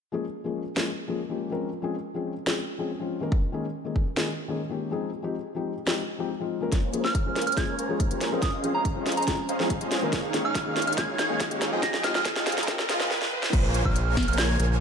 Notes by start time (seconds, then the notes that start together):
0.12 F3 G#3 A#3 C#4 G#4
0.44 F3 G#3 A#3 C#4 G#4
0.76 F3 G#3 A#3 C#4 G#4, snare
1.08 F3 G#3 A#3 C#4 G#4
1.29 F3 G#3 A#3 C#4 G4
1.50 F3 G#3 C4 C#4 A#4
1.82 F3 G#3 C4 C#4 G#4
2.14 F3 G#3 C4 C#4 G#4
2.46 F3 G#3 C4 C#4 G#4, snare
2.78 F3 G#3 C4 C#4 G#4
2.99 F3 G#3 C4 C#4 F4
3.21 D#3 G#3 A#3 C#4 A#4
3.32 kick
3.52 D#3 G#3 A#3 C#4 G#4
3.84 D#3 G#3 A#3 C#4 G#4
3.96 kick
4.16 D#3 G#3 A#3 C#4 G#4, snare
4.48 D#3 G#3 A#3 C#4 G#4
4.70 D#3 G#3 A#3 C#4 G4
4.91 F3 G#3 C4 D#4 G#4
5.22 F3 G#3 C4 D#4 G4
5.55 F3 G#3 C4 D#4 G4
5.86 F3 G#3 C4 D#4 G4, snare
6.18 F3 G#3 C4 D#4 G4
6.40 F3 G#3 C4 D#4 F4
6.61 F3 G#3 A#3 C#4 A#4
6.72 G#3 A#3 C#4 A#4 C5 C#5 G#5, kick, snare, closed hi-hat, riser
6.92 F3 G#3 A#3 C#4 G#4, closed hi-hat
7.04 A#3 A#4 C5 C#5 G#5 F6, snare
7.15 kick, closed hi-hat
7.25 F3 G#3 A#3 C#4 G#4
7.36 snare, closed hi-hat
7.42 closed hi-hat
7.47 A#3 A#4 C5 C#5 G#5 F6, closed hi-hat
7.52 closed hi-hat
7.56 F3 G#3 A#3 C#4 G#4 G#6, kick, snare, closed hi-hat
7.79 A#3 A#4 C5 C#5 G#5, closed hi-hat
7.88 F3 G#3 A#3 C#4 G#4
8.00 kick, closed hi-hat
8.10 F3 G#3 A#3 C#4 G4, closed hi-hat
8.21 snare, closed hi-hat
8.31 F3 G#3 C4 C#4 G#4 A#4 C5 D#5 F5
8.42 F3 C#4 C5 D#6, kick, snare, closed hi-hat
8.63 F3 G#3 C4 C#4 G#4, closed hi-hat
8.75 C#4 G#4 C5 D#5 F5 A#5
8.85 kick, closed hi-hat
8.95 F3 G#3 C4 C#4 G#4
9.06 snare, closed hi-hat
9.12 closed hi-hat
9.17 C#4 G#4 C5 D#5 A#5, closed hi-hat
9.22 closed hi-hat
9.27 F3 G#3 C4 C#4 G#4 A#5, kick, snare, closed hi-hat
9.49 C#4 G#4 C5 D#5 F5, closed hi-hat
9.59 F3 G#3 C4 C#4 G#4 C5 D#5 F5, snare
9.70 kick, closed hi-hat
9.80 F3 G#3 C4 C#4 F4 G#4 C5 D#5 F5, closed hi-hat
9.91 C#4 G#4 C5 D#5 F5, snare, closed hi-hat
10.02 D#3 G#3 A#3 C#4 A#4
10.13 D#3 G#3 D#4 G#4 C#5 F5, kick, snare, closed hi-hat
10.33 D#3 G#3 A#3 C#4 G#4, snare, closed hi-hat
10.45 D#3 D#4 G#4 C#5 F5 F6
10.55 kick, snare, closed hi-hat
10.65 D#3 G#3 A#3 C#4 G#4
10.76 snare, closed hi-hat
10.82 closed hi-hat
10.87 D#3 D#4 G#4 C#5 F5 F6, closed hi-hat
10.93 closed hi-hat
10.97 D#3 G#3 A#3 C#4 G#4 G#6, kick, snare, closed hi-hat
11.19 D#3 D#4 G#4 C#5 F5 G#6, snare, closed hi-hat
11.29 D#3 G#3 A#3 C#4 G#4
11.40 kick, snare, closed hi-hat
11.50 D#3 G#3 A#3 C#4 G4, closed hi-hat
11.62 snare, closed hi-hat
11.71 F3 G#3 C4 D#4 F4 G#4 D#5 G5
11.83 F4 D#5 G5 A#6, kick, snare, closed hi-hat
11.94 A#6, snare
12.03 F3 G#3 C4 D#4 G4 F6, snare, closed hi-hat
12.15 F3 F4 G#4 D#5 G5 F6, snare
12.25 kick, snare, closed hi-hat
12.36 F3 G#3 C4 D#4 G4, snare
12.47 snare, closed hi-hat
12.52 closed hi-hat
12.58 F3 F4 G#4 D#5 A#5, snare, closed hi-hat
12.63 closed hi-hat
12.67 F3 G#3 C4 D#4 G4, kick, snare, closed hi-hat
12.79 snare
12.89 F3 G#3 C4 D#4 F4 G#4 D#5 F5, snare, closed hi-hat
13.00 snare
13.11 snare
13.22 snare
13.43 snare
13.53 A#1 C#3 A#3 G#4 A#4 C5 C#5 G#5, kick, closed hi-hat, crash
13.74 closed hi-hat
13.85 A#1 A#3 A#4 C5 C#5 G#5 F6, kick
13.96 closed hi-hat
14.17 kick, snare, closed hi-hat
14.23 closed hi-hat
14.28 A#1 A#3 A#4 C5 C#5 G#5 F6, closed hi-hat
14.33 closed hi-hat
14.38 G#6, snare, closed hi-hat
14.59 A#1 A#3 A#4 C5 C#5 G#5, closed hi-hat